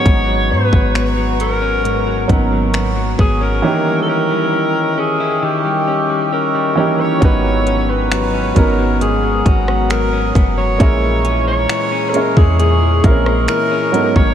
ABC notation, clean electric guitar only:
X:1
M:4/4
L:1/16
Q:1/4=67
K:G#m
V:1 name="Clean electric guitar" clef=bass
[G,,C] F, B, F, B, F, B, C G,, F, B, F, B, F, B, C | D, =G, C G, C2 C E D, G, C G, C G, C2 | G,, F, C B, F, C B, F, G,, F, C B, F, C B, F, | A,, E, C G, E, C G, E, A,, E, C G, E, C G,, F, |]